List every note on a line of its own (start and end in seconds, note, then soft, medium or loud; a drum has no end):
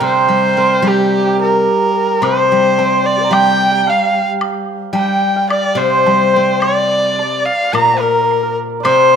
0.00 1.65 C3 medium
0.00 0.27 G3 soft
0.00 0.83 G4 medium
0.00 0.57 A#4 medium
0.00 2.21 C5 medium
0.00 2.42 D5 soft
0.00 1.44 G5 medium
0.05 0.89 C5 medium
0.28 0.81 G3 soft
0.57 1.66 C4 soft
0.57 3.40 A#4 medium
0.82 2.50 G3 medium
0.82 0.91 G4 soft
0.88 1.40 G4 medium
0.92 0.99 G4 soft
0.99 1.07 G4 soft
1.07 1.12 G4 soft
1.13 1.20 G4 soft
1.20 1.27 G4 soft
1.27 1.34 G4 soft
1.35 1.43 G4 soft
1.35 1.90 A#4 medium
1.42 1.48 G4 soft
1.42 2.25 A#4 medium
1.48 4.62 G4 soft
1.94 2.20 A#4 medium
2.21 3.87 C3 soft
2.21 2.78 C5 medium
2.21 3.06 C5 medium
2.21 3.07 C5 medium
2.21 high woodblock soft
2.52 3.29 G3 soft
2.78 3.88 C4 soft
2.78 5.42 C5 medium
2.78 low woodblock soft
3.03 5.49 D5 medium
3.03 3.16 D5 medium
3.03 3.35 D5 medium
3.17 3.19 G4 soft
3.17 3.22 A#4 soft
3.22 3.24 C5 soft
3.22 3.29 D5 medium
3.22 5.11 A#5 medium
3.30 4.92 G3 soft
3.30 3.34 F5 medium
3.30 3.71 G5 medium
3.30 3.86 G5 medium
3.30 3.91 G5 medium
3.30 high woodblock medium
3.71 4.93 G5 medium
3.87 4.25 F5 medium
3.87 5.36 F5 medium
3.87 4.29 F5 medium
3.87 low woodblock soft
4.41 high woodblock medium
4.93 6.05 G3 medium
4.93 7.00 G5 medium
4.93 5.47 G5 medium
4.93 low woodblock soft
5.36 7.58 F5 medium
5.50 5.79 D5 medium
5.50 5.70 D5 medium
5.50 6.62 D5 medium
5.50 high woodblock medium
5.72 7.45 C3 medium
5.72 5.78 D5 soft
5.77 6.62 C5 medium
5.77 6.61 C5 medium
5.77 6.33 C5 medium
6.06 7.19 G3 soft
6.06 low woodblock soft
6.33 7.48 C4 soft
6.33 8.85 C5 medium
6.60 7.47 D5 medium
6.60 7.74 D5 medium
6.60 7.18 D5 medium
6.60 high woodblock medium
7.19 8.80 D5 medium
7.19 low woodblock soft
7.45 7.75 F5 medium
7.73 8.84 A#2 soft
7.73 8.01 A#5 medium
7.73 7.95 A#5 medium
7.73 9.16 A#5 medium
7.73 high woodblock medium
7.94 8.02 C5 soft
8.00 8.56 A#4 medium
8.00 8.57 A#4 medium
8.00 8.42 A#4 medium
8.31 low woodblock soft
8.43 9.16 A#4 medium
8.80 9.16 C5 medium
8.80 9.16 D5 medium
8.84 9.16 C3 medium
8.84 9.16 C5 medium
8.84 high woodblock medium